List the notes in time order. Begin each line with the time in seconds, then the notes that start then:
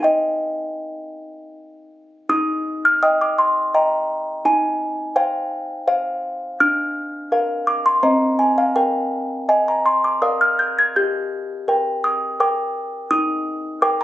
0.00 D#4 G5
0.04 D#5
2.29 D#4 D#6
2.85 F6
3.03 D#5 G5 D#6
3.21 D6
3.38 C6
3.74 D#5 G5 A#5
4.45 D#4 G#5
5.16 C5 F5 G5
5.88 C5 F5
6.60 D4 F6
7.32 A#4 F5
7.67 D6
7.86 C6
8.03 C4 C5 D#5 A#5
8.39 G#5
8.58 F5
8.76 A#4 G5
9.49 D#5 G#5
9.68 A#5
9.86 C6
10.04 D6
10.22 A#4 D5 F5 D#6
10.41 F6
10.59 G6
10.79 G#6
10.96 G4 G6
11.68 A#4 G5
12.04 D#6
12.40 A#4 G5 D6
13.11 D#4 D#6
13.82 A#4 G5 D6
14.01 A#5